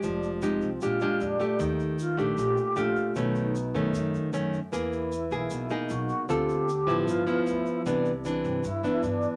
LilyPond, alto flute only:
\new Staff \with { instrumentName = "Alto flute" } { \time 4/4 \key dis \phrygian \tempo 4 = 153 d'4 c'4 eis'4 d'4 | dis'4 eis'8 g'4. eis'4 | dis'2. r4 | e'2. fis'4 |
g'2 eis'4 e'4 | d'4 c'4 e'4 d'4 | }